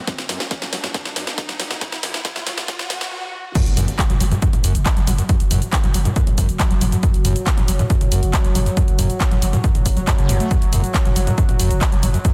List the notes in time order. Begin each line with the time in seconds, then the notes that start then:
Already playing: riser
0.07 F#2, kick, snare, closed hi-hat
0.18 snare, closed hi-hat
0.29 F#2, snare, mid tom, open hi-hat
0.40 snare, closed hi-hat
0.51 kick, snare, closed hi-hat
0.62 F#3, snare, closed hi-hat, mid tom
0.73 F#3, snare, open hi-hat
0.84 F#2, snare, closed hi-hat, mid tom
0.94 F#2, kick, snare, closed hi-hat
1.05 snare, closed hi-hat, mid tom
1.16 F#2, snare, open hi-hat
1.27 snare, closed hi-hat
1.38 kick, snare, closed hi-hat
1.49 F#3, snare, closed hi-hat
1.60 F#3, snare, mid tom, open hi-hat
1.71 F#2, snare, closed hi-hat
1.81 F#2, kick, snare, closed hi-hat
1.92 snare, closed hi-hat
2.03 F#2, snare, mid tom, open hi-hat
2.14 snare, closed hi-hat
2.25 kick, snare, closed hi-hat
2.36 F#3, snare, closed hi-hat, mid tom
2.47 F#3, snare, open hi-hat
2.58 F#2, snare, closed hi-hat, mid tom
2.68 F#2, kick, snare, closed hi-hat, swell
2.79 snare, closed hi-hat, mid tom
2.90 F#2, kick, snare, open hi-hat
3.01 snare, closed hi-hat
3.55 F#2 F#3, kick, closed hi-hat, crash, impact, shaker
3.66 F#1, closed hi-hat, shaker
3.77 F#1 F#2, mid tom, open hi-hat, shaker
3.88 closed hi-hat, shaker
3.99 kick, clap, closed hi-hat, shaker
4.10 F#1 F#3, closed hi-hat, mid tom, shaker
4.20 F#1 F#3, open hi-hat, shaker
4.32 F#2, closed hi-hat, mid tom, shaker
4.42 F#2, kick, closed hi-hat, shaker
4.53 F#1, closed hi-hat, mid tom, shaker
4.64 F#1 F#2, open hi-hat, shaker
4.75 F#1, closed hi-hat, shaker
4.86 kick, clap, closed hi-hat, shaker
4.97 F#1 F#3, closed hi-hat, shaker
5.07 F#1 F#3, mid tom, open hi-hat, shaker
5.18 F#2, closed hi-hat, shaker
5.29 F#2, kick, closed hi-hat, shaker
5.40 F#1, closed hi-hat, shaker
5.51 F#1 F#2, mid tom, open hi-hat, shaker
5.62 closed hi-hat, shaker
5.73 kick, clap, closed hi-hat, shaker
5.84 F#1 F#3, closed hi-hat, mid tom, shaker
5.94 F#1 F#3, open hi-hat, shaker
6.05 F#2, closed hi-hat, mid tom, shaker
6.16 F#2, kick, closed hi-hat, shaker
6.27 F#1, closed hi-hat, mid tom, shaker
6.38 F#1 F#2, kick, open hi-hat, shaker
6.49 F#1, closed hi-hat, shaker
6.60 kick, clap, closed hi-hat, shaker
6.71 F#1 F#3, closed hi-hat, shaker
6.81 F#1 F#3, mid tom, open hi-hat, shaker
6.92 F#2, closed hi-hat, shaker
7.03 F#2, kick, closed hi-hat, shaker
7.14 F#1, closed hi-hat, shaker
7.25 F#1 F#2, mid tom, open hi-hat, shaker
7.36 closed hi-hat, shaker
7.47 kick, clap, closed hi-hat, shaker
7.58 F#1 F#3, closed hi-hat, mid tom, shaker
7.68 F#1 F#3, open hi-hat, shaker
7.79 F#2, closed hi-hat, mid tom, shaker
7.90 F#2, kick, closed hi-hat, shaker
8.01 F#1, closed hi-hat, mid tom, shaker
8.12 F#1 F#2, open hi-hat, shaker
8.23 F#1, closed hi-hat, shaker
8.33 kick, clap, closed hi-hat, shaker
8.44 F#1 F#3, closed hi-hat, shaker
8.55 F#1 F#3, mid tom, open hi-hat, shaker
8.66 F#2, closed hi-hat, shaker
8.77 F#2, kick, closed hi-hat, shaker
8.88 F#1, closed hi-hat, shaker
8.99 F#1 F#2, mid tom, open hi-hat, shaker
9.10 closed hi-hat, shaker
9.20 kick, clap, closed hi-hat, shaker
9.31 F#1 F#3, closed hi-hat, mid tom, shaker
9.42 F#1 F#3, open hi-hat, shaker
9.53 F#2, closed hi-hat, mid tom, shaker
9.64 F#2, kick, closed hi-hat, shaker
9.75 F#1, closed hi-hat, mid tom, shaker
9.86 F#1, kick, open hi-hat, shaker
9.97 F#1 F#3, closed hi-hat, shaker
10.07 F#2, kick, clap, closed hi-hat, shaker
10.18 F#1 C#3, closed hi-hat, shaker
10.29 F#1 F#2, mid tom, open hi-hat, shaker
10.40 A3, closed hi-hat, shaker
10.51 F#2, kick, closed hi-hat, shaker
10.62 F#1, closed hi-hat, shaker
10.73 F#1 F#2, mid tom, open hi-hat, shaker
10.84 closed hi-hat, shaker
10.94 kick, clap, closed hi-hat, shaker
11.05 F#1 F#3, closed hi-hat, mid tom, shaker
11.16 F#1 F#3, open hi-hat, shaker
11.27 F#2, closed hi-hat, mid tom, shaker
11.38 F#2, kick, closed hi-hat, shaker
11.49 F#1, closed hi-hat, mid tom, shaker
11.60 F#1 F#2, open hi-hat, shaker
11.71 F#1, closed hi-hat, shaker
11.81 kick, clap, closed hi-hat, shaker
11.92 F#1 F#3, closed hi-hat, shaker
12.03 F#1 F#3, mid tom, open hi-hat, shaker
12.14 F#2, closed hi-hat, shaker
12.25 F#2, kick, closed hi-hat, shaker